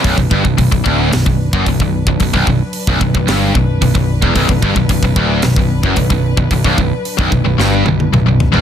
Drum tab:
HH |o---o---o---o---|o---o---o---o---|o---o---o---o---|o---o-----------|
SD |--------o-------|--------o-------|--------o-------|--------o-------|
T1 |----------------|----------------|----------------|----------oo----|
T2 |----------------|----------------|----------------|------------o---|
FT |----------------|----------------|----------------|--------------oo|
BD |ooooooo--o-ooo-o|ooo--ooo--o-oo-o|ooooooo--o-ooo-o|ooo--oo---------|